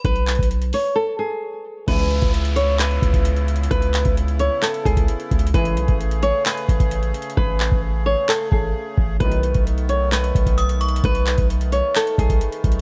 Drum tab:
HH |x--x--x-x-x-x--x--o-----------------------------|x--x--x--x--x--x--x-----x--x--x--x--x--x--x-x-x-|x--x--x--x--x--x--x-----x--x--x--x--x--x--x-x-x-|x--x--x--x--x--x--x-----x--x--x--x--x--x--x-x-x-|
CP |------x-----------------------------------------|------------------------x-----------------------|------x-----------------x-----------------------|------------------------x-----------------------|
BD |o--------o--------------------------------------|o--------o--------------------o--o--------------|o--------o--------------------o--o--------o-----|o--------o--------------------o--o--------------|

HH |------------------------------------------------|x--x--x--x--x--x--x-----x--x--x--x--x--x--x-x-x-|x--x--x--x--x--x--x-----x--x--x--x--x--x--x-x---|
CP |------x-----------------x-----------------------|------------------------x-----------------------|------x-----------------x-----------------------|
BD |o--------o--------------------o-----------o-----|o--------o--------------------o--o--------------|o--------o--------------------o--o--------o-----|